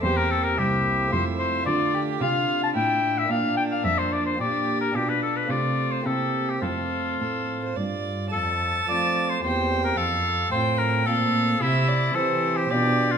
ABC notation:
X:1
M:3/4
L:1/16
Q:1/4=110
K:Cmix
V:1 name="Oboe"
c B A B G4 c2 c2 | [K:F] d3 z f3 a g3 e | f2 g f e c d c d3 B | G =B A B d3 c A3 G |
F8 z4 | A4 d3 c c3 B | A4 c2 B2 A4 | E4 A3 G G3 F |]
V:2 name="Violin"
G4 E8 | [K:F] F2 G2 F4 E4 | D8 G4 | D4 F4 G4 |
A4 A3 c d4 | a8 g4 | f4 g4 f4 | e2 d2 c4 d4 |]
V:3 name="Pipe organ"
[B,CG]8 [A,CF]4 | [K:F] [A,DF]12 | [B,DF]8 [B,DG]4 | [DF]4 [A,CF]4 [B,CE]4 |
[A,CF]12 | z4 [A,CF]4 [B,CG]4 | z4 [A,CF]4 [A,CF]4 | z4 [CG]4 [DF]4 |]
V:4 name="Pipe organ" clef=bass
E,,4 C,,4 F,,4 | [K:F] D,4 C,4 A,,4 | B,,4 F,,4 B,,4 | =B,,4 C,4 C,4 |
F,,4 A,,4 G,,4 | F,,4 F,4 E,,4 | F,,4 A,,4 B,,4 | C,4 E,4 =B,,4 |]
V:5 name="Cello" clef=bass
E,,4 C,,4 F,,4 | [K:F] D,4 C,4 A,,4 | B,,4 F,,4 B,,4 | =B,,4 C,4 C,4 |
F,,4 A,,4 G,,4 | F,,4 F,4 E,,4 | F,,4 A,,4 B,,4 | C,4 E,4 =B,,4 |]